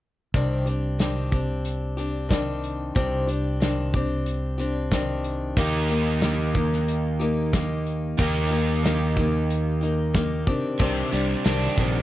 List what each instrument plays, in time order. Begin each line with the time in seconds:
0.34 fingered electric bass C2, steel-string acoustic guitar C3 D#3 C4 D4 G4, kick, closed hi-hat
0.66 steel-string acoustic guitar C4 D4 G4, closed hi-hat
0.99 steel-string acoustic guitar D#3 C4 D4 G4, snare, closed hi-hat
1.31 steel-string acoustic guitar C4 D4 G4, kick, closed hi-hat
1.65 closed hi-hat
1.97 steel-string acoustic guitar C4 D4 G4, closed hi-hat
2.29 steel-string acoustic guitar D#3 C4 D4 G4, kick, snare, closed hi-hat
2.64 closed hi-hat
2.95 fingered electric bass C2, steel-string acoustic guitar C3 D#3 C4 D4 G4, kick, closed hi-hat
3.27 steel-string acoustic guitar C4 D4 G4, closed hi-hat
3.60 steel-string acoustic guitar D#3 C4 D4 G4, snare, closed hi-hat
3.94 steel-string acoustic guitar C4 D4 G4, kick, closed hi-hat
4.26 closed hi-hat
4.58 steel-string acoustic guitar C4 D4 G4, closed hi-hat
4.91 steel-string acoustic guitar D#3 C4 D4 G4, kick, snare, closed hi-hat
5.24 closed hi-hat
5.57 fingered electric bass D#2, steel-string acoustic guitar D#3 A#3 D#4 G4, kick, closed hi-hat
5.89 steel-string acoustic guitar A#3 D#4 G4, closed hi-hat
6.20 steel-string acoustic guitar D#3 A#3 D#4 G4, snare, closed hi-hat
6.54 steel-string acoustic guitar A#3 D#4 G4, kick, closed hi-hat
6.73 snare
6.88 closed hi-hat
7.19 steel-string acoustic guitar A#3 D#4 G4, closed hi-hat
7.53 steel-string acoustic guitar D#3 A#3 D#4 G4, kick, snare, closed hi-hat
7.86 closed hi-hat
8.18 fingered electric bass D#2, steel-string acoustic guitar D#3 A#3 D#4 G4, kick, closed hi-hat
8.51 steel-string acoustic guitar A#3 D#4 G4, closed hi-hat
8.83 steel-string acoustic guitar D#3 A#3 D#4 G4, snare, closed hi-hat
9.16 steel-string acoustic guitar A#3 D#4 G4, kick, closed hi-hat
9.50 closed hi-hat
9.81 steel-string acoustic guitar A#3 D#4 G4, closed hi-hat
10.14 steel-string acoustic guitar D#3 A#3 D#4 G4, kick, snare, closed hi-hat
10.47 steel-string acoustic guitar C3 D#3 C4 D4 G4, kick, closed hi-hat
10.79 fingered electric bass C2, steel-string acoustic guitar C3 D#3 C4 D4 G4, kick, crash
11.11 fingered electric bass C2, overdriven electric guitar G3, steel-string acoustic guitar C4 D4 G4, closed hi-hat
11.44 fingered electric bass C2, steel-string acoustic guitar D#3 C4 D4 G4, snare, closed hi-hat
11.62 snare
11.77 fingered electric bass A#1, overdriven electric guitar D#3, steel-string acoustic guitar C4 D4 G4, kick, closed hi-hat